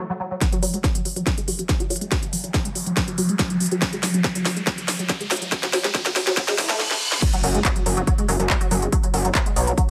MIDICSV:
0, 0, Header, 1, 8, 480
1, 0, Start_track
1, 0, Tempo, 425532
1, 467, Time_signature, 4, 2, 24, 8
1, 11167, End_track
2, 0, Start_track
2, 0, Title_t, "Synth drone"
2, 0, Program_c, 0, 95
2, 0, Note_on_c, 0, 54, 80
2, 0, Note_on_c, 0, 66, 76
2, 516, Note_off_c, 0, 66, 0
2, 517, Note_off_c, 0, 54, 0
2, 11167, End_track
3, 0, Start_track
3, 0, Title_t, "Synth arpeggio sound"
3, 0, Program_c, 1, 84
3, 110, Note_on_c, 1, 54, 80
3, 140, Note_off_c, 1, 54, 0
3, 225, Note_on_c, 1, 54, 77
3, 279, Note_off_c, 1, 54, 0
3, 351, Note_on_c, 1, 54, 76
3, 400, Note_off_c, 1, 54, 0
3, 466, Note_on_c, 1, 54, 83
3, 498, Note_off_c, 1, 54, 0
3, 590, Note_on_c, 1, 54, 104
3, 640, Note_off_c, 1, 54, 0
3, 705, Note_on_c, 1, 54, 107
3, 758, Note_off_c, 1, 54, 0
3, 830, Note_on_c, 1, 56, 72
3, 880, Note_off_c, 1, 56, 0
3, 945, Note_on_c, 1, 54, 98
3, 978, Note_off_c, 1, 54, 0
3, 1069, Note_on_c, 1, 54, 79
3, 1144, Note_off_c, 1, 54, 0
3, 1185, Note_on_c, 1, 54, 70
3, 1217, Note_off_c, 1, 54, 0
3, 1309, Note_on_c, 1, 54, 104
3, 1359, Note_off_c, 1, 54, 0
3, 1425, Note_on_c, 1, 54, 105
3, 1478, Note_off_c, 1, 54, 0
3, 1550, Note_on_c, 1, 56, 78
3, 1600, Note_off_c, 1, 56, 0
3, 1665, Note_on_c, 1, 54, 101
3, 1698, Note_off_c, 1, 54, 0
3, 1790, Note_on_c, 1, 54, 78
3, 1864, Note_off_c, 1, 54, 0
3, 1906, Note_on_c, 1, 54, 85
3, 1938, Note_off_c, 1, 54, 0
3, 2029, Note_on_c, 1, 54, 107
3, 2079, Note_off_c, 1, 54, 0
3, 2145, Note_on_c, 1, 54, 106
3, 2198, Note_off_c, 1, 54, 0
3, 2270, Note_on_c, 1, 56, 77
3, 2319, Note_off_c, 1, 56, 0
3, 2385, Note_on_c, 1, 54, 104
3, 2418, Note_off_c, 1, 54, 0
3, 2509, Note_on_c, 1, 54, 80
3, 2584, Note_off_c, 1, 54, 0
3, 2625, Note_on_c, 1, 54, 77
3, 2658, Note_off_c, 1, 54, 0
3, 2749, Note_on_c, 1, 54, 92
3, 2799, Note_off_c, 1, 54, 0
3, 2865, Note_on_c, 1, 54, 102
3, 2918, Note_off_c, 1, 54, 0
3, 2989, Note_on_c, 1, 56, 77
3, 3039, Note_off_c, 1, 56, 0
3, 3105, Note_on_c, 1, 54, 94
3, 3138, Note_off_c, 1, 54, 0
3, 3231, Note_on_c, 1, 54, 79
3, 3304, Note_off_c, 1, 54, 0
3, 3470, Note_on_c, 1, 54, 106
3, 3520, Note_off_c, 1, 54, 0
3, 3585, Note_on_c, 1, 54, 103
3, 3639, Note_off_c, 1, 54, 0
3, 3710, Note_on_c, 1, 56, 78
3, 3760, Note_off_c, 1, 56, 0
3, 3825, Note_on_c, 1, 54, 100
3, 3858, Note_off_c, 1, 54, 0
3, 3950, Note_on_c, 1, 54, 78
3, 4024, Note_off_c, 1, 54, 0
3, 4067, Note_on_c, 1, 54, 75
3, 4098, Note_off_c, 1, 54, 0
3, 4190, Note_on_c, 1, 54, 99
3, 4240, Note_off_c, 1, 54, 0
3, 4306, Note_on_c, 1, 54, 99
3, 4359, Note_off_c, 1, 54, 0
3, 4430, Note_on_c, 1, 56, 81
3, 4480, Note_off_c, 1, 56, 0
3, 4545, Note_on_c, 1, 54, 102
3, 4578, Note_off_c, 1, 54, 0
3, 4669, Note_on_c, 1, 54, 74
3, 4744, Note_off_c, 1, 54, 0
3, 4785, Note_on_c, 1, 54, 85
3, 4817, Note_off_c, 1, 54, 0
3, 4909, Note_on_c, 1, 54, 97
3, 4959, Note_off_c, 1, 54, 0
3, 5025, Note_on_c, 1, 54, 99
3, 5078, Note_off_c, 1, 54, 0
3, 5149, Note_on_c, 1, 56, 79
3, 5199, Note_off_c, 1, 56, 0
3, 5264, Note_on_c, 1, 54, 105
3, 5297, Note_off_c, 1, 54, 0
3, 5390, Note_on_c, 1, 54, 75
3, 5464, Note_off_c, 1, 54, 0
3, 5505, Note_on_c, 1, 54, 80
3, 5538, Note_off_c, 1, 54, 0
3, 5630, Note_on_c, 1, 54, 101
3, 5680, Note_off_c, 1, 54, 0
3, 5745, Note_on_c, 1, 54, 106
3, 5799, Note_off_c, 1, 54, 0
3, 5870, Note_on_c, 1, 56, 81
3, 5920, Note_off_c, 1, 56, 0
3, 5985, Note_on_c, 1, 54, 105
3, 6018, Note_off_c, 1, 54, 0
3, 6110, Note_on_c, 1, 54, 76
3, 6184, Note_off_c, 1, 54, 0
3, 6226, Note_on_c, 1, 54, 86
3, 6258, Note_off_c, 1, 54, 0
3, 6350, Note_on_c, 1, 54, 108
3, 6399, Note_off_c, 1, 54, 0
3, 6465, Note_on_c, 1, 54, 102
3, 6518, Note_off_c, 1, 54, 0
3, 6590, Note_on_c, 1, 56, 75
3, 6639, Note_off_c, 1, 56, 0
3, 6705, Note_on_c, 1, 54, 99
3, 6738, Note_off_c, 1, 54, 0
3, 6831, Note_on_c, 1, 54, 77
3, 6905, Note_off_c, 1, 54, 0
3, 6947, Note_on_c, 1, 54, 80
3, 6978, Note_off_c, 1, 54, 0
3, 7070, Note_on_c, 1, 54, 107
3, 7119, Note_off_c, 1, 54, 0
3, 7186, Note_on_c, 1, 54, 107
3, 7239, Note_off_c, 1, 54, 0
3, 7311, Note_on_c, 1, 56, 81
3, 7360, Note_off_c, 1, 56, 0
3, 7426, Note_on_c, 1, 52, 84
3, 7505, Note_off_c, 1, 52, 0
3, 7550, Note_on_c, 1, 57, 100
3, 7600, Note_off_c, 1, 57, 0
3, 8147, Note_on_c, 1, 54, 83
3, 8179, Note_off_c, 1, 54, 0
3, 8271, Note_on_c, 1, 54, 105
3, 8320, Note_off_c, 1, 54, 0
3, 8386, Note_on_c, 1, 54, 100
3, 8439, Note_off_c, 1, 54, 0
3, 8512, Note_on_c, 1, 56, 73
3, 8561, Note_off_c, 1, 56, 0
3, 8627, Note_on_c, 1, 54, 101
3, 8659, Note_off_c, 1, 54, 0
3, 8752, Note_on_c, 1, 54, 76
3, 8825, Note_off_c, 1, 54, 0
3, 8867, Note_on_c, 1, 54, 73
3, 8899, Note_off_c, 1, 54, 0
3, 8991, Note_on_c, 1, 54, 106
3, 9040, Note_off_c, 1, 54, 0
3, 9106, Note_on_c, 1, 54, 105
3, 9159, Note_off_c, 1, 54, 0
3, 9230, Note_on_c, 1, 56, 77
3, 9280, Note_off_c, 1, 56, 0
3, 9346, Note_on_c, 1, 54, 108
3, 9378, Note_off_c, 1, 54, 0
3, 9470, Note_on_c, 1, 54, 77
3, 9544, Note_off_c, 1, 54, 0
3, 9586, Note_on_c, 1, 54, 87
3, 9618, Note_off_c, 1, 54, 0
3, 9711, Note_on_c, 1, 54, 107
3, 9760, Note_off_c, 1, 54, 0
3, 9826, Note_on_c, 1, 54, 100
3, 9879, Note_off_c, 1, 54, 0
3, 9950, Note_on_c, 1, 56, 76
3, 10000, Note_off_c, 1, 56, 0
3, 10067, Note_on_c, 1, 54, 101
3, 10098, Note_off_c, 1, 54, 0
3, 10190, Note_on_c, 1, 54, 82
3, 10264, Note_off_c, 1, 54, 0
3, 10306, Note_on_c, 1, 54, 76
3, 10338, Note_off_c, 1, 54, 0
3, 10431, Note_on_c, 1, 54, 95
3, 10480, Note_off_c, 1, 54, 0
3, 10547, Note_on_c, 1, 54, 100
3, 10600, Note_off_c, 1, 54, 0
3, 10672, Note_on_c, 1, 56, 78
3, 10720, Note_off_c, 1, 56, 0
3, 10788, Note_on_c, 1, 54, 103
3, 10819, Note_off_c, 1, 54, 0
3, 10911, Note_on_c, 1, 54, 81
3, 10985, Note_off_c, 1, 54, 0
3, 11028, Note_on_c, 1, 54, 89
3, 11059, Note_off_c, 1, 54, 0
3, 11167, End_track
4, 0, Start_track
4, 0, Title_t, "Analog synth bass"
4, 0, Program_c, 2, 38
4, 8386, Note_on_c, 2, 30, 99
4, 8568, Note_off_c, 2, 30, 0
4, 8866, Note_on_c, 2, 30, 91
4, 9047, Note_off_c, 2, 30, 0
4, 9347, Note_on_c, 2, 30, 97
4, 9439, Note_off_c, 2, 30, 0
4, 9469, Note_on_c, 2, 30, 91
4, 9647, Note_off_c, 2, 30, 0
4, 9826, Note_on_c, 2, 30, 95
4, 10007, Note_off_c, 2, 30, 0
4, 10306, Note_on_c, 2, 30, 106
4, 10488, Note_off_c, 2, 30, 0
4, 10786, Note_on_c, 2, 35, 95
4, 10967, Note_off_c, 2, 35, 0
4, 11167, End_track
5, 0, Start_track
5, 0, Title_t, "Impact"
5, 0, Program_c, 3, 103
5, 8147, Note_on_c, 3, 60, 77
5, 10067, Note_off_c, 3, 60, 0
5, 11167, End_track
6, 0, Start_track
6, 0, Title_t, "Reverse cymbal"
6, 0, Program_c, 4, 119
6, 7187, Note_on_c, 4, 60, 79
6, 8147, Note_off_c, 4, 60, 0
6, 11167, End_track
7, 0, Start_track
7, 0, Title_t, "Riser"
7, 0, Program_c, 5, 103
7, 467, Note_on_c, 5, 60, 77
7, 8147, Note_off_c, 5, 60, 0
7, 11167, End_track
8, 0, Start_track
8, 0, Title_t, "Drums"
8, 467, Note_on_c, 9, 36, 115
8, 467, Note_on_c, 9, 38, 49
8, 467, Note_on_c, 9, 42, 85
8, 580, Note_off_c, 9, 36, 0
8, 580, Note_off_c, 9, 38, 0
8, 580, Note_off_c, 9, 42, 0
8, 591, Note_on_c, 9, 42, 56
8, 704, Note_off_c, 9, 42, 0
8, 706, Note_on_c, 9, 46, 102
8, 819, Note_off_c, 9, 46, 0
8, 832, Note_on_c, 9, 42, 54
8, 944, Note_off_c, 9, 42, 0
8, 947, Note_on_c, 9, 36, 120
8, 948, Note_on_c, 9, 38, 49
8, 948, Note_on_c, 9, 42, 55
8, 1060, Note_off_c, 9, 36, 0
8, 1061, Note_off_c, 9, 38, 0
8, 1061, Note_off_c, 9, 42, 0
8, 1072, Note_on_c, 9, 42, 84
8, 1185, Note_off_c, 9, 42, 0
8, 1188, Note_on_c, 9, 46, 93
8, 1301, Note_off_c, 9, 46, 0
8, 1313, Note_on_c, 9, 42, 51
8, 1425, Note_off_c, 9, 42, 0
8, 1427, Note_on_c, 9, 36, 120
8, 1428, Note_on_c, 9, 38, 55
8, 1428, Note_on_c, 9, 42, 84
8, 1540, Note_off_c, 9, 36, 0
8, 1541, Note_off_c, 9, 38, 0
8, 1541, Note_off_c, 9, 42, 0
8, 1552, Note_on_c, 9, 42, 56
8, 1665, Note_off_c, 9, 42, 0
8, 1667, Note_on_c, 9, 46, 101
8, 1780, Note_off_c, 9, 46, 0
8, 1792, Note_on_c, 9, 42, 54
8, 1905, Note_off_c, 9, 42, 0
8, 1907, Note_on_c, 9, 36, 113
8, 1908, Note_on_c, 9, 38, 54
8, 1908, Note_on_c, 9, 42, 82
8, 2020, Note_off_c, 9, 36, 0
8, 2020, Note_off_c, 9, 38, 0
8, 2020, Note_off_c, 9, 42, 0
8, 2031, Note_on_c, 9, 42, 54
8, 2144, Note_off_c, 9, 42, 0
8, 2147, Note_on_c, 9, 46, 93
8, 2209, Note_on_c, 9, 42, 63
8, 2260, Note_off_c, 9, 46, 0
8, 2271, Note_off_c, 9, 42, 0
8, 2271, Note_on_c, 9, 42, 53
8, 2384, Note_off_c, 9, 42, 0
8, 2387, Note_on_c, 9, 36, 119
8, 2387, Note_on_c, 9, 38, 62
8, 2387, Note_on_c, 9, 42, 82
8, 2499, Note_off_c, 9, 36, 0
8, 2499, Note_off_c, 9, 38, 0
8, 2499, Note_off_c, 9, 42, 0
8, 2510, Note_on_c, 9, 42, 56
8, 2623, Note_off_c, 9, 42, 0
8, 2626, Note_on_c, 9, 46, 108
8, 2739, Note_off_c, 9, 46, 0
8, 2751, Note_on_c, 9, 42, 53
8, 2864, Note_off_c, 9, 42, 0
8, 2867, Note_on_c, 9, 36, 127
8, 2867, Note_on_c, 9, 38, 62
8, 2867, Note_on_c, 9, 42, 56
8, 2979, Note_off_c, 9, 36, 0
8, 2980, Note_off_c, 9, 38, 0
8, 2980, Note_off_c, 9, 42, 0
8, 2991, Note_on_c, 9, 42, 88
8, 3104, Note_off_c, 9, 42, 0
8, 3106, Note_on_c, 9, 46, 92
8, 3219, Note_off_c, 9, 46, 0
8, 3231, Note_on_c, 9, 42, 54
8, 3344, Note_off_c, 9, 42, 0
8, 3346, Note_on_c, 9, 38, 67
8, 3346, Note_on_c, 9, 42, 88
8, 3347, Note_on_c, 9, 36, 125
8, 3459, Note_off_c, 9, 36, 0
8, 3459, Note_off_c, 9, 38, 0
8, 3459, Note_off_c, 9, 42, 0
8, 3471, Note_on_c, 9, 42, 56
8, 3583, Note_off_c, 9, 42, 0
8, 3586, Note_on_c, 9, 46, 106
8, 3698, Note_off_c, 9, 46, 0
8, 3711, Note_on_c, 9, 42, 52
8, 3823, Note_off_c, 9, 42, 0
8, 3826, Note_on_c, 9, 36, 115
8, 3826, Note_on_c, 9, 38, 69
8, 3826, Note_on_c, 9, 42, 87
8, 3939, Note_off_c, 9, 36, 0
8, 3939, Note_off_c, 9, 38, 0
8, 3939, Note_off_c, 9, 42, 0
8, 3950, Note_on_c, 9, 42, 57
8, 4062, Note_off_c, 9, 42, 0
8, 4065, Note_on_c, 9, 46, 94
8, 4127, Note_on_c, 9, 42, 66
8, 4178, Note_off_c, 9, 46, 0
8, 4190, Note_off_c, 9, 42, 0
8, 4190, Note_on_c, 9, 42, 54
8, 4303, Note_off_c, 9, 42, 0
8, 4305, Note_on_c, 9, 38, 78
8, 4305, Note_on_c, 9, 42, 83
8, 4306, Note_on_c, 9, 36, 125
8, 4418, Note_off_c, 9, 38, 0
8, 4418, Note_off_c, 9, 42, 0
8, 4419, Note_off_c, 9, 36, 0
8, 4429, Note_on_c, 9, 42, 54
8, 4542, Note_off_c, 9, 42, 0
8, 4545, Note_on_c, 9, 38, 78
8, 4545, Note_on_c, 9, 46, 113
8, 4658, Note_off_c, 9, 38, 0
8, 4658, Note_off_c, 9, 46, 0
8, 4670, Note_on_c, 9, 42, 54
8, 4783, Note_off_c, 9, 42, 0
8, 4786, Note_on_c, 9, 36, 126
8, 4786, Note_on_c, 9, 38, 79
8, 4786, Note_on_c, 9, 42, 58
8, 4898, Note_off_c, 9, 38, 0
8, 4898, Note_off_c, 9, 42, 0
8, 4899, Note_off_c, 9, 36, 0
8, 4910, Note_on_c, 9, 42, 89
8, 5023, Note_off_c, 9, 42, 0
8, 5025, Note_on_c, 9, 38, 81
8, 5025, Note_on_c, 9, 46, 96
8, 5138, Note_off_c, 9, 38, 0
8, 5138, Note_off_c, 9, 46, 0
8, 5150, Note_on_c, 9, 42, 52
8, 5262, Note_off_c, 9, 42, 0
8, 5266, Note_on_c, 9, 36, 125
8, 5266, Note_on_c, 9, 38, 82
8, 5266, Note_on_c, 9, 42, 82
8, 5379, Note_off_c, 9, 36, 0
8, 5379, Note_off_c, 9, 38, 0
8, 5379, Note_off_c, 9, 42, 0
8, 5390, Note_on_c, 9, 42, 59
8, 5503, Note_off_c, 9, 42, 0
8, 5506, Note_on_c, 9, 38, 84
8, 5506, Note_on_c, 9, 46, 110
8, 5619, Note_off_c, 9, 38, 0
8, 5619, Note_off_c, 9, 46, 0
8, 5630, Note_on_c, 9, 42, 55
8, 5743, Note_off_c, 9, 42, 0
8, 5746, Note_on_c, 9, 36, 127
8, 5746, Note_on_c, 9, 38, 87
8, 5746, Note_on_c, 9, 42, 84
8, 5859, Note_off_c, 9, 36, 0
8, 5859, Note_off_c, 9, 38, 0
8, 5859, Note_off_c, 9, 42, 0
8, 5871, Note_on_c, 9, 42, 57
8, 5984, Note_off_c, 9, 42, 0
8, 5987, Note_on_c, 9, 38, 89
8, 5987, Note_on_c, 9, 46, 97
8, 6050, Note_on_c, 9, 42, 62
8, 6100, Note_off_c, 9, 38, 0
8, 6100, Note_off_c, 9, 46, 0
8, 6111, Note_off_c, 9, 42, 0
8, 6111, Note_on_c, 9, 42, 54
8, 6224, Note_off_c, 9, 42, 0
8, 6227, Note_on_c, 9, 36, 116
8, 6227, Note_on_c, 9, 38, 89
8, 6227, Note_on_c, 9, 42, 78
8, 6339, Note_off_c, 9, 36, 0
8, 6340, Note_off_c, 9, 38, 0
8, 6340, Note_off_c, 9, 42, 0
8, 6352, Note_on_c, 9, 38, 83
8, 6352, Note_on_c, 9, 42, 52
8, 6464, Note_off_c, 9, 38, 0
8, 6464, Note_off_c, 9, 42, 0
8, 6467, Note_on_c, 9, 38, 96
8, 6467, Note_on_c, 9, 46, 108
8, 6580, Note_off_c, 9, 38, 0
8, 6580, Note_off_c, 9, 46, 0
8, 6592, Note_on_c, 9, 38, 84
8, 6592, Note_on_c, 9, 42, 49
8, 6704, Note_off_c, 9, 38, 0
8, 6704, Note_off_c, 9, 42, 0
8, 6707, Note_on_c, 9, 36, 127
8, 6708, Note_on_c, 9, 38, 95
8, 6708, Note_on_c, 9, 42, 54
8, 6819, Note_off_c, 9, 36, 0
8, 6820, Note_off_c, 9, 38, 0
8, 6820, Note_off_c, 9, 42, 0
8, 6832, Note_on_c, 9, 38, 91
8, 6832, Note_on_c, 9, 42, 84
8, 6945, Note_off_c, 9, 38, 0
8, 6945, Note_off_c, 9, 42, 0
8, 6947, Note_on_c, 9, 38, 98
8, 6947, Note_on_c, 9, 46, 92
8, 7059, Note_off_c, 9, 38, 0
8, 7059, Note_off_c, 9, 46, 0
8, 7071, Note_on_c, 9, 38, 84
8, 7071, Note_on_c, 9, 42, 53
8, 7184, Note_off_c, 9, 38, 0
8, 7184, Note_off_c, 9, 42, 0
8, 7186, Note_on_c, 9, 38, 110
8, 7186, Note_on_c, 9, 42, 82
8, 7187, Note_on_c, 9, 36, 127
8, 7299, Note_off_c, 9, 36, 0
8, 7299, Note_off_c, 9, 38, 0
8, 7299, Note_off_c, 9, 42, 0
8, 7311, Note_on_c, 9, 38, 93
8, 7311, Note_on_c, 9, 42, 55
8, 7424, Note_off_c, 9, 38, 0
8, 7424, Note_off_c, 9, 42, 0
8, 7427, Note_on_c, 9, 38, 105
8, 7427, Note_on_c, 9, 46, 109
8, 7539, Note_off_c, 9, 38, 0
8, 7539, Note_off_c, 9, 46, 0
8, 7551, Note_on_c, 9, 38, 94
8, 7551, Note_on_c, 9, 42, 52
8, 7664, Note_off_c, 9, 38, 0
8, 7664, Note_off_c, 9, 42, 0
8, 7666, Note_on_c, 9, 38, 67
8, 7779, Note_off_c, 9, 38, 0
8, 7791, Note_on_c, 9, 38, 64
8, 7904, Note_off_c, 9, 38, 0
8, 8030, Note_on_c, 9, 38, 83
8, 8143, Note_off_c, 9, 38, 0
8, 8147, Note_on_c, 9, 36, 118
8, 8147, Note_on_c, 9, 42, 85
8, 8147, Note_on_c, 9, 49, 107
8, 8260, Note_off_c, 9, 36, 0
8, 8260, Note_off_c, 9, 42, 0
8, 8260, Note_off_c, 9, 49, 0
8, 8272, Note_on_c, 9, 42, 56
8, 8384, Note_off_c, 9, 42, 0
8, 8386, Note_on_c, 9, 46, 109
8, 8499, Note_off_c, 9, 46, 0
8, 8511, Note_on_c, 9, 42, 55
8, 8624, Note_off_c, 9, 42, 0
8, 8627, Note_on_c, 9, 36, 127
8, 8627, Note_on_c, 9, 39, 127
8, 8627, Note_on_c, 9, 42, 89
8, 8740, Note_off_c, 9, 36, 0
8, 8740, Note_off_c, 9, 39, 0
8, 8740, Note_off_c, 9, 42, 0
8, 8751, Note_on_c, 9, 42, 61
8, 8864, Note_off_c, 9, 42, 0
8, 8866, Note_on_c, 9, 46, 113
8, 8979, Note_off_c, 9, 46, 0
8, 8990, Note_on_c, 9, 42, 54
8, 9103, Note_off_c, 9, 42, 0
8, 9106, Note_on_c, 9, 42, 89
8, 9107, Note_on_c, 9, 36, 127
8, 9219, Note_off_c, 9, 42, 0
8, 9220, Note_off_c, 9, 36, 0
8, 9230, Note_on_c, 9, 42, 55
8, 9343, Note_off_c, 9, 42, 0
8, 9346, Note_on_c, 9, 46, 102
8, 9459, Note_off_c, 9, 46, 0
8, 9471, Note_on_c, 9, 42, 53
8, 9584, Note_off_c, 9, 42, 0
8, 9586, Note_on_c, 9, 39, 127
8, 9587, Note_on_c, 9, 36, 122
8, 9699, Note_off_c, 9, 39, 0
8, 9700, Note_off_c, 9, 36, 0
8, 9710, Note_on_c, 9, 42, 57
8, 9823, Note_off_c, 9, 42, 0
8, 9826, Note_on_c, 9, 46, 107
8, 9939, Note_off_c, 9, 46, 0
8, 9951, Note_on_c, 9, 42, 54
8, 10064, Note_off_c, 9, 42, 0
8, 10067, Note_on_c, 9, 36, 123
8, 10067, Note_on_c, 9, 42, 86
8, 10180, Note_off_c, 9, 36, 0
8, 10180, Note_off_c, 9, 42, 0
8, 10191, Note_on_c, 9, 42, 59
8, 10304, Note_off_c, 9, 42, 0
8, 10307, Note_on_c, 9, 46, 108
8, 10419, Note_off_c, 9, 46, 0
8, 10432, Note_on_c, 9, 42, 56
8, 10544, Note_off_c, 9, 42, 0
8, 10547, Note_on_c, 9, 36, 127
8, 10547, Note_on_c, 9, 39, 125
8, 10547, Note_on_c, 9, 42, 83
8, 10660, Note_off_c, 9, 36, 0
8, 10660, Note_off_c, 9, 39, 0
8, 10660, Note_off_c, 9, 42, 0
8, 10672, Note_on_c, 9, 42, 59
8, 10785, Note_off_c, 9, 42, 0
8, 10788, Note_on_c, 9, 46, 110
8, 10900, Note_off_c, 9, 46, 0
8, 10911, Note_on_c, 9, 42, 54
8, 11024, Note_off_c, 9, 42, 0
8, 11027, Note_on_c, 9, 36, 127
8, 11028, Note_on_c, 9, 42, 85
8, 11140, Note_off_c, 9, 36, 0
8, 11140, Note_off_c, 9, 42, 0
8, 11167, End_track
0, 0, End_of_file